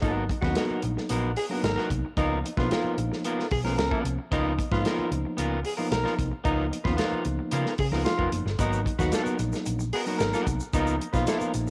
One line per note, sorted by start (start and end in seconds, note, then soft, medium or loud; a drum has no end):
0.01 0.26 G#1 medium
0.01 0.34 F#3 medium
0.01 0.34 A#3 medium
0.01 0.23 B3 medium
0.01 0.34 B3 medium
0.01 0.23 D#4 loud
0.01 0.34 D#4 medium
0.01 0.24 F#4 medium
0.01 0.24 A#4 medium
0.01 kick loud
0.01 closed hi-hat medium
0.29 muted clean electric guitar stroke soft
0.29 kick medium
0.29 closed hi-hat medium
0.41 0.55 D#2 medium
0.41 1.27 F#3 medium
0.41 1.27 A#3 medium
0.41 1.27 B3 medium
0.41 0.50 C#4 medium
0.41 0.79 F#4 medium
0.41 0.56 F#4 medium
0.41 0.58 B4 medium
0.41 kick medium
0.41 snare soft
0.45 0.55 B3 medium
0.50 1.30 D#4 loud
0.55 0.81 B3 medium
0.55 0.81 F#4 medium
0.55 0.82 A#4 medium
0.55 snare loud
0.55 closed hi-hat medium
0.70 muted fingered electric bass stroke soft
0.82 0.95 A#1 medium
0.82 muted clean electric guitar stroke soft
0.82 closed hi-hat medium
0.97 muted clean electric guitar stroke soft
0.97 snare soft
1.09 1.34 A#1 medium
1.09 1.30 B3 medium
1.09 1.31 F#4 medium
1.09 1.31 A#4 medium
1.09 closed hi-hat medium
1.36 1.45 G#4 medium
1.36 muted clean electric guitar stroke soft
1.36 open hi-hat medium
1.49 2.02 F#3 medium
1.49 2.02 A#3 medium
1.49 2.03 B3 medium
1.49 1.63 B3 medium
1.49 1.57 D4 medium
1.49 1.63 F#4 medium
1.49 1.64 A#4 medium
1.57 2.06 D#4 medium
1.63 1.75 G#1 medium
1.63 1.85 A#4 loud
1.63 snare loud
1.63 closed hi-hat medium
1.76 1.89 B3 medium
1.76 1.90 F#4 medium
1.76 1.91 A#4 medium
1.76 snare soft
1.90 2.02 C2 medium
1.90 muted clean electric guitar stroke soft
1.90 kick medium
1.90 closed hi-hat medium
2.05 muted clean electric guitar stroke soft
2.17 2.41 C#2 loud
2.17 2.48 F3 medium
2.17 2.49 A#3 medium
2.17 2.38 B3 medium
2.17 2.49 B3 medium
2.17 2.38 D#4 loud
2.17 2.49 D#4 medium
2.17 2.38 F4 medium
2.17 2.38 A#4 medium
2.17 kick loud
2.17 closed hi-hat medium
2.44 muted clean electric guitar stroke soft
2.44 closed hi-hat medium
2.57 2.69 B1 medium
2.57 3.41 F3 loud
2.57 3.41 A#3 medium
2.57 3.41 B3 medium
2.57 2.70 B3 medium
2.57 2.64 D4 medium
2.57 2.95 F4 medium
2.57 2.71 F4 medium
2.57 2.73 B4 medium
2.57 kick loud
2.57 snare soft
2.64 3.45 D#4 loud
2.71 2.96 B3 medium
2.71 2.96 F4 medium
2.71 2.97 A#4 medium
2.71 snare loud
2.71 closed hi-hat medium
2.84 muted fingered electric bass stroke soft
2.98 3.10 A#1 medium
2.98 muted clean electric guitar stroke soft
2.98 closed hi-hat medium
3.12 muted clean electric guitar stroke medium
3.12 snare soft
3.24 3.45 B3 medium
3.24 3.46 F4 medium
3.24 3.46 A#4 medium
3.24 closed hi-hat medium
3.39 snare soft
3.51 3.78 B1 medium
3.51 3.59 G#4 medium
3.51 muted clean electric guitar stroke soft
3.51 kick loud
3.51 open hi-hat medium
3.64 4.17 F3 medium
3.64 4.17 A#3 medium
3.64 4.17 B3 medium
3.64 3.77 B3 soft
3.64 4.17 C#4 loud
3.64 3.78 F4 medium
3.64 3.78 A#4 medium
3.64 snare soft
3.78 3.90 C#2 medium
3.78 3.99 A#4 loud
3.78 muted clean electric guitar stroke soft
3.78 snare loud
3.78 closed hi-hat medium
3.91 4.04 B3 medium
3.91 4.05 F4 medium
3.91 4.05 A#4 medium
3.91 kick medium
4.04 4.16 C2 medium
4.04 muted clean electric guitar stroke soft
4.04 closed hi-hat medium
4.19 muted clean electric guitar stroke soft
4.31 4.55 C#2 loud
4.31 4.63 F3 medium
4.31 4.63 A#3 medium
4.31 4.52 B3 medium
4.31 4.63 B3 medium
4.31 4.53 D#4 loud
4.31 4.63 D#4 medium
4.31 4.52 F4 loud
4.31 4.53 A#4 medium
4.31 kick loud
4.31 closed hi-hat medium
4.58 muted clean electric guitar stroke soft
4.58 kick medium
4.58 closed hi-hat medium
4.71 4.84 G#2 medium
4.71 5.55 F3 medium
4.71 5.55 A#3 medium
4.71 5.55 B3 medium
4.71 4.84 B3 medium
4.71 5.56 D#4 loud
4.71 5.09 F4 loud
4.71 4.85 F4 medium
4.71 4.87 B4 medium
4.71 kick loud
4.71 snare soft
4.85 5.10 B3 medium
4.85 5.10 F4 medium
4.85 5.11 A#4 medium
4.85 snare medium
4.85 closed hi-hat medium
4.98 muted fingered electric bass stroke soft
5.11 5.23 C#2 loud
5.11 muted clean electric guitar stroke soft
5.11 closed hi-hat medium
5.25 muted clean electric guitar stroke soft
5.37 5.62 C#2 medium
5.37 5.58 B3 medium
5.37 5.59 F4 medium
5.37 5.59 A#4 medium
5.37 closed hi-hat loud
5.64 5.73 G#4 medium
5.64 muted clean electric guitar stroke soft
5.64 open hi-hat medium
5.77 6.31 F3 medium
5.77 6.31 A#3 medium
5.77 6.31 B3 medium
5.77 5.89 B3 soft
5.77 6.31 D#4 loud
5.77 5.90 F4 medium
5.77 5.90 A#4 medium
5.90 6.04 B1 medium
5.90 6.13 A#4 loud
5.90 muted clean electric guitar stroke soft
5.90 snare loud
5.90 closed hi-hat medium
6.04 6.15 B3 medium
6.04 6.16 F4 medium
6.04 6.16 A#4 medium
6.04 snare soft
6.16 6.31 C2 medium
6.16 muted clean electric guitar stroke soft
6.16 kick medium
6.16 closed hi-hat medium
6.32 muted clean electric guitar stroke soft
6.44 6.69 C#2 loud
6.44 6.76 F3 medium
6.44 6.76 A#3 medium
6.44 6.65 B3 medium
6.44 6.77 B3 medium
6.44 6.66 D#4 loud
6.44 6.77 D#4 medium
6.44 6.66 F4 medium
6.44 6.66 A#4 medium
6.44 kick loud
6.44 closed hi-hat medium
6.71 muted clean electric guitar stroke soft
6.71 closed hi-hat medium
6.84 6.97 D#2 medium
6.84 7.69 F3 medium
6.84 7.69 A#3 medium
6.84 7.69 B3 medium
6.84 6.96 B3 medium
6.84 6.92 C#4 medium
6.84 7.23 F4 medium
6.84 6.97 F4 medium
6.84 6.99 B4 medium
6.84 kick loud
6.84 snare soft
6.92 7.73 D#4 loud
6.97 7.22 B3 medium
6.97 7.23 F4 medium
6.97 7.23 A#4 medium
6.97 snare medium
6.97 closed hi-hat medium
7.12 muted fingered electric bass stroke soft
7.25 7.37 C#2 medium
7.25 muted clean electric guitar stroke soft
7.25 closed hi-hat medium
7.39 muted clean electric guitar stroke soft
7.51 7.64 C#3 medium
7.51 7.72 B3 medium
7.51 7.73 F4 medium
7.51 7.73 A#4 medium
7.51 closed hi-hat medium
7.66 snare soft
7.78 7.91 C#3 medium
7.78 7.87 G#4 medium
7.78 muted clean electric guitar stroke soft
7.78 kick loud
7.78 open hi-hat medium
7.91 8.04 C#2 medium
7.91 8.44 F3 medium
7.91 8.44 A#3 medium
7.91 8.45 B3 medium
7.91 8.05 B3 soft
7.91 8.45 D#4 medium
7.91 8.06 F4 medium
7.91 8.06 A#4 medium
7.91 snare soft
8.05 8.26 F4 loud
8.05 muted clean electric guitar stroke soft
8.05 snare loud
8.05 closed hi-hat loud
8.18 8.31 F1 medium
8.18 8.31 B3 medium
8.18 8.31 F4 medium
8.18 8.32 A#4 medium
8.18 kick loud
8.32 8.44 F#1 medium
8.32 muted clean electric guitar stroke soft
8.32 closed hi-hat medium
8.45 8.57 G1 medium
8.45 muted clean electric guitar stroke soft
8.45 snare soft
8.58 8.83 G#1 loud
8.58 8.90 F#3 medium
8.58 8.90 A#3 medium
8.58 8.79 B3 medium
8.58 8.91 B3 medium
8.58 8.91 D#4 medium
8.58 8.81 D#4 loud
8.58 8.80 F#4 medium
8.58 8.80 A#4 medium
8.58 kick loud
8.58 closed hi-hat medium
8.58 shaker medium
8.73 shaker medium
8.85 muted clean electric guitar stroke soft
8.85 kick medium
8.85 closed hi-hat medium
8.99 9.11 D#2 medium
8.99 9.83 F#3 loud
8.99 9.83 A#3 loud
8.99 9.83 B3 medium
8.99 9.11 B3 soft
8.99 9.84 D#4 loud
8.99 9.12 F#4 medium
8.99 9.37 F#4 medium
8.99 9.14 B4 medium
8.99 kick medium
8.99 snare soft
8.99 shaker soft
9.12 9.37 B3 medium
9.12 9.38 F#4 medium
9.12 9.38 A#4 medium
9.12 snare medium
9.12 closed hi-hat medium
9.12 shaker medium
9.26 muted fingered electric bass stroke medium
9.26 shaker medium
9.39 9.51 A#1 medium
9.39 muted clean electric guitar stroke soft
9.39 closed hi-hat medium
9.39 shaker soft
9.53 muted clean electric guitar stroke medium
9.53 snare soft
9.53 shaker medium
9.66 9.90 A#1 medium
9.66 muted clean electric guitar stroke soft
9.66 closed hi-hat medium
9.66 shaker medium
9.79 muted clean electric guitar stroke soft
9.79 shaker medium
9.93 10.08 B3 medium
9.93 10.07 F#4 medium
9.93 10.01 G#4 medium
9.93 10.06 A#4 medium
9.93 open hi-hat medium
10.06 10.59 F#3 medium
10.06 10.59 A#3 medium
10.06 10.59 B3 medium
10.06 10.20 B3 soft
10.06 10.59 D#4 medium
10.06 10.20 F#4 medium
10.06 10.21 A#4 medium
10.06 shaker soft
10.18 10.32 G#1 medium
10.18 10.40 A#4 loud
10.18 muted clean electric guitar stroke soft
10.18 snare loud
10.18 closed hi-hat medium
10.18 shaker medium
10.34 10.47 B3 medium
10.34 10.47 F#4 loud
10.34 10.48 A#4 medium
10.34 snare soft
10.34 shaker medium
10.47 10.59 C2 medium
10.47 kick medium
10.47 closed hi-hat medium
10.47 shaker medium
10.60 muted clean electric guitar stroke soft
10.60 shaker medium
10.73 10.98 C#2 loud
10.73 11.05 F3 medium
10.73 11.05 A#3 medium
10.73 11.05 B3 medium
10.73 10.94 B3 medium
10.73 10.95 D#4 loud
10.73 11.05 D#4 medium
10.73 10.95 F4 loud
10.73 10.95 A#4 medium
10.73 kick loud
10.73 closed hi-hat medium
10.73 shaker medium
10.87 shaker medium
11.00 muted clean electric guitar stroke soft
11.00 closed hi-hat medium
11.13 11.26 B1 medium
11.13 11.70 F3 medium
11.13 11.70 A#3 medium
11.13 11.70 B3 medium
11.13 11.26 B3 medium
11.13 11.70 D#4 loud
11.13 11.27 F4 medium
11.13 11.52 F4 medium
11.13 11.28 B4 medium
11.13 kick loud
11.13 snare soft
11.13 shaker medium
11.27 11.52 B3 medium
11.27 11.52 F4 medium
11.27 11.53 A#4 medium
11.27 snare medium
11.27 closed hi-hat medium
11.27 shaker medium
11.41 muted fingered electric bass stroke soft
11.41 shaker medium
11.54 11.66 A#1 medium
11.54 muted clean electric guitar stroke soft
11.54 closed hi-hat medium
11.54 shaker medium